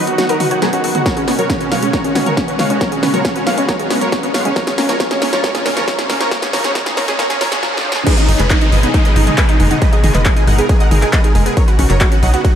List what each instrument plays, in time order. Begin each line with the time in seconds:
Already playing: analog synth pad D#3 B3 D#4 F#4
0.07 synth arpeggio sound B3, digital synth lead F#4, supersaw synth F#4, closed hi-hat
0.18 synth arpeggio sound F#3, supersaw synth F#4, digital synth lead F#4, snare, closed hi-hat
0.29 supersaw synth F#4 A#4, digital synth lead A#4, synth arpeggio sound B4, closed hi-hat
0.40 synth arpeggio sound D#4, digital synth lead F#4, supersaw synth F#4, open hi-hat, mid tom
0.51 supersaw synth F#4, digital synth lead F#4, synth arpeggio sound C#5, closed hi-hat
0.62 synth arpeggio sound F#3, supersaw synth B3 G#4, digital synth lead G#4, snare, closed hi-hat
0.73 synth arpeggio sound C#4, supersaw synth F#4, digital synth lead F#4, closed hi-hat
0.84 synth arpeggio sound F#3, supersaw synth F#4, digital synth lead F#4, open hi-hat
0.95 synth arpeggio sound B3, supersaw synth F#4, digital synth lead F#4, closed hi-hat, mid tom
1.06 analog synth pad B2 G#3 C#4 F#4, synth arpeggio sound F#3, supersaw synth A#4 C#5, digital synth lead C#5, kick, snare, closed hi-hat, riser
1.17 supersaw synth C#4, digital synth lead C#4, synth arpeggio sound G#4, closed hi-hat
1.28 synth arpeggio sound B3, supersaw synth C#4, digital synth lead C#4, snare, open hi-hat
1.39 synth arpeggio sound F#3, supersaw synth A#4 C#5, digital synth lead C#5, closed hi-hat
1.50 supersaw synth C#4, digital synth lead C#4, synth arpeggio sound F#4, kick, snare, closed hi-hat
1.61 synth arpeggio sound B3, digital synth lead C#4, supersaw synth C#4, closed hi-hat
1.71 synth arpeggio sound F#3, supersaw synth C#5 F5, digital synth lead F5, snare, open hi-hat
1.82 synth arpeggio sound G#3, digital synth lead C#4, supersaw synth C#4, closed hi-hat
1.93 synth arpeggio sound F#3, supersaw synth A#4 C#5, digital synth lead C#5, kick, snare, closed hi-hat
2.04 digital synth lead C#4, supersaw synth C#4, synth arpeggio sound G#4, closed hi-hat
2.15 synth arpeggio sound B3, digital synth lead C#4, supersaw synth C#4, snare, open hi-hat, mid tom
2.26 synth arpeggio sound F#3, supersaw synth A#4 C#5, digital synth lead C#5, closed hi-hat, mid tom
2.37 digital synth lead C#4, supersaw synth C#4, synth arpeggio sound F#4, kick, snare, closed hi-hat
2.48 synth arpeggio sound B3, digital synth lead C#4, supersaw synth C#4, closed hi-hat
2.59 synth arpeggio sound F#3, supersaw synth C#5 F5, digital synth lead F5, snare, open hi-hat, mid tom
2.70 synth arpeggio sound G#3, digital synth lead C#4, supersaw synth C#4, closed hi-hat
2.81 synth arpeggio sound F#3, analog synth pad B3, supersaw synth A#4 C#5, digital synth lead C#5, kick, snare, closed hi-hat
2.92 digital synth lead C#4, supersaw synth C#4, synth arpeggio sound G#4, closed hi-hat
3.03 synth arpeggio sound B3, digital synth lead C#4, supersaw synth C#4, snare, open hi-hat, mid tom
3.14 synth arpeggio sound F#3, supersaw synth A#4 C#5, digital synth lead C#5, closed hi-hat, mid tom
3.25 supersaw synth C#4, synth arpeggio sound F#4, kick, snare, closed hi-hat
3.36 synth arpeggio sound B3, digital synth lead C#4, supersaw synth C#4, closed hi-hat
3.47 synth arpeggio sound F#3, supersaw synth C#5 F5, digital synth lead F5, snare, open hi-hat
3.57 synth arpeggio sound G#3, digital synth lead C#4, supersaw synth C#4, closed hi-hat
3.68 synth arpeggio sound F#3, supersaw synth A#4 C#5, digital synth lead C#5, kick, snare, closed hi-hat
3.79 digital synth lead C#4, supersaw synth C#4, synth arpeggio sound G#4, closed hi-hat
3.90 synth arpeggio sound B3, digital synth lead C#4, supersaw synth C#4, snare, open hi-hat
4.01 synth arpeggio sound F#3, supersaw synth A#4 C#5, digital synth lead C#5, closed hi-hat
4.12 digital synth lead C#4, supersaw synth C#4, synth arpeggio sound F#4, kick, snare, closed hi-hat
4.23 synth arpeggio sound B3, digital synth lead C#4, supersaw synth C#4, closed hi-hat
4.34 synth arpeggio sound F#3, supersaw synth C#5 F5, digital synth lead F5, snare, open hi-hat
4.45 synth arpeggio sound G#3, digital synth lead C#4, supersaw synth C#4, closed hi-hat, mid tom
4.56 analog synth pad A#2 C#4 F4, synth arpeggio sound F3, supersaw synth A#4 C#5, digital synth lead C#5, kick, snare, closed hi-hat
4.67 digital synth lead C#4, supersaw synth C#4, synth arpeggio sound G#4, snare, closed hi-hat
4.78 synth arpeggio sound A#3, digital synth lead C#4, supersaw synth C#4, snare, open hi-hat
4.89 synth arpeggio sound F3, supersaw synth A#4 C#5, digital synth lead C#5, snare, closed hi-hat
5.00 synth arpeggio sound F3, supersaw synth A#4 C#5, digital synth lead C#5, kick, snare, closed hi-hat
5.11 digital synth lead C#4, supersaw synth C#4, synth arpeggio sound G#4, snare, closed hi-hat
5.22 synth arpeggio sound A#3, digital synth lead C#4, supersaw synth C#4, snare, open hi-hat
5.33 synth arpeggio sound F3, supersaw synth A#4 C#5, digital synth lead C#5, snare, closed hi-hat
5.43 synth arpeggio sound F3, supersaw synth A#4 C#5, digital synth lead C#5, kick, snare, closed hi-hat
5.55 digital synth lead C#4, supersaw synth C#4, synth arpeggio sound G#4, snare, closed hi-hat
5.66 synth arpeggio sound A#3, digital synth lead C#4, supersaw synth C#4, snare, open hi-hat, mid tom
5.76 synth arpeggio sound F3, supersaw synth A#4 C#5, digital synth lead C#5, snare, closed hi-hat, mid tom
5.88 synth arpeggio sound F3, supersaw synth A#4 C#5, digital synth lead C#5, kick, snare, closed hi-hat
5.99 digital synth lead C#4, supersaw synth C#4, synth arpeggio sound G#4, snare, closed hi-hat
6.09 synth arpeggio sound A#3, digital synth lead C#4, supersaw synth C#4, snare, open hi-hat, mid tom
6.20 synth arpeggio sound F3, supersaw synth A#4 C#5, digital synth lead C#5, snare, closed hi-hat
6.31 synth arpeggio sound F3, analog synth pad D#4, supersaw synth A#4 C#5, digital synth lead C#5, kick, snare, closed hi-hat
6.42 digital synth lead C#4, supersaw synth C#4, synth arpeggio sound G#4, snare, closed hi-hat
6.53 synth arpeggio sound F3, supersaw synth A#4 C#5, digital synth lead C#5, snare, open hi-hat, mid tom
6.64 digital synth lead C#4, supersaw synth C#4, synth arpeggio sound G#4, snare, closed hi-hat, mid tom
6.75 synth arpeggio sound F3, supersaw synth A#4 C#5, digital synth lead C#5, kick, snare, closed hi-hat
6.86 digital synth lead C#4, supersaw synth C#4, synth arpeggio sound G#4, snare, closed hi-hat
6.97 synth arpeggio sound F3, supersaw synth A#4 C#5, digital synth lead C#5, kick, snare, open hi-hat
7.08 digital synth lead C#4, supersaw synth C#4, synth arpeggio sound G#4, snare, closed hi-hat
7.19 synth arpeggio sound F3, supersaw synth A#4 C#5, digital synth lead C#5, kick, snare, closed hi-hat
7.30 digital synth lead C#4, supersaw synth C#4, synth arpeggio sound G#4, snare, closed hi-hat
7.41 synth arpeggio sound F3, supersaw synth A#4 C#5, digital synth lead C#5, snare, open hi-hat, mid tom
7.52 supersaw synth C#4, digital synth lead C#4, synth arpeggio sound G#4, snare, closed hi-hat
7.63 synth arpeggio sound F3, snare
7.74 synth arpeggio sound G#4, snare
7.85 synth arpeggio sound F3
7.92 synth arpeggio sound G#4, snare
8.07 analog synth pad B2 G#3 D#4 G#4, synth arpeggio sound G#3, supersaw synth G#4 B4, digital synth lead B4, kick, closed hi-hat, ride, crash, downlifter
8.18 digital synth lead D#4, supersaw synth D#4, synth arpeggio sound D#5, closed hi-hat
8.28 analog synth bass G#1, digital synth lead D#4, synth arpeggio sound D#4, supersaw synth D#4, open hi-hat
8.39 analog synth bass F#1, synth arpeggio sound G#3, supersaw synth G#4 B4, digital synth lead B4, clap, closed hi-hat
8.50 digital synth lead D#4, supersaw synth D#4, synth arpeggio sound B4, kick, clap, closed hi-hat, ride
8.61 digital synth lead D#4, synth arpeggio sound D#4, supersaw synth D#4, closed hi-hat
8.72 analog synth bass G#1, synth arpeggio sound G#3, supersaw synth B4 D#5, digital synth lead D#5, open hi-hat
8.83 synth arpeggio sound B3, digital synth lead D#4, supersaw synth D#4, closed hi-hat
8.94 synth arpeggio sound G#3, digital synth lead D#4, supersaw synth D#4, kick, closed hi-hat, ride
9.05 supersaw synth B4 D#5, digital synth lead D#5, synth arpeggio sound D#5, closed hi-hat
9.16 analog synth bass G#1, digital synth lead D#4, synth arpeggio sound D#4, supersaw synth D#4, open hi-hat
9.27 synth arpeggio sound G#3, digital synth lead D#4, supersaw synth D#4, closed hi-hat, mid tom
9.38 supersaw synth G#4 B4, digital synth lead B4, synth arpeggio sound B4, kick, clap, closed hi-hat, ride
9.49 digital synth lead D#4, synth arpeggio sound D#4, supersaw synth D#4, closed hi-hat
9.60 analog synth bass F#1, synth arpeggio sound G#3, digital synth lead D#4, supersaw synth D#4, open hi-hat, mid tom
9.71 synth arpeggio sound B3, digital synth lead D#4, supersaw synth D#4, closed hi-hat, mid tom
9.82 synth arpeggio sound G#3, analog synth pad A#4, supersaw synth B4 D#5, digital synth lead D#5, kick, closed hi-hat, ride
9.93 digital synth lead G#4, supersaw synth G#4, synth arpeggio sound D#5, closed hi-hat
10.04 analog synth bass G#1, synth arpeggio sound D#4, digital synth lead G#4, supersaw synth G#4, open hi-hat, mid tom
10.15 analog synth bass F#1, synth arpeggio sound G#3, supersaw synth B4 D#5, digital synth lead D#5, clap, closed hi-hat, mid tom
10.26 digital synth lead G#4, supersaw synth G#4, synth arpeggio sound B4, kick, clap, closed hi-hat, ride
10.36 synth arpeggio sound D#4, supersaw synth G#4, digital synth lead G#4, closed hi-hat
10.47 analog synth bass G#1, synth arpeggio sound G#3, supersaw synth D#5 F#5, digital synth lead F#5, open hi-hat
10.58 synth arpeggio sound B3, supersaw synth G#4, digital synth lead G#4, closed hi-hat
10.69 synth arpeggio sound G#3, supersaw synth G#4, digital synth lead G#4, kick, closed hi-hat, ride
10.80 synth arpeggio sound D#5, supersaw synth D#5 F#5, digital synth lead F#5, closed hi-hat
10.91 analog synth bass G#1, synth arpeggio sound D#4, digital synth lead G#4, supersaw synth G#4, open hi-hat, mid tom
11.02 synth arpeggio sound G#3, digital synth lead G#4, supersaw synth G#4, clap, closed hi-hat
11.13 synth arpeggio sound B4, supersaw synth B4 D#5, digital synth lead D#5, kick, clap, closed hi-hat, ride
11.24 synth arpeggio sound D#4, digital synth lead G#4, supersaw synth G#4, closed hi-hat
11.35 analog synth bass F#1, synth arpeggio sound G#3, digital synth lead G#4, supersaw synth G#4, open hi-hat
11.46 synth arpeggio sound B3, digital synth lead G#4, supersaw synth G#4, closed hi-hat
11.57 analog synth pad C#3 B3 D#4 F#4, synth arpeggio sound F#3, supersaw synth A#4 C#5, digital synth lead C#5, kick, closed hi-hat, ride
11.68 digital synth lead F#4, supersaw synth F#4, synth arpeggio sound B4, closed hi-hat
11.79 analog synth bass B1, synth arpeggio sound C#4, digital synth lead F#4, supersaw synth F#4, open hi-hat
11.90 analog synth bass F#1, synth arpeggio sound F#3, supersaw synth A#4 C#5, digital synth lead C#5, clap, closed hi-hat
12.01 synth arpeggio sound F#4, digital synth lead F#4, supersaw synth F#4, kick, clap, closed hi-hat, ride
12.12 synth arpeggio sound C#4, digital synth lead F#4, supersaw synth F#4, closed hi-hat
12.23 analog synth bass B1, synth arpeggio sound F#3, supersaw synth D#5 F#5, digital synth lead F#5, open hi-hat
12.34 synth arpeggio sound B3, digital synth lead F#4, supersaw synth F#4, closed hi-hat
12.45 synth arpeggio sound F#3, digital synth lead F#4, supersaw synth F#4, kick, closed hi-hat, ride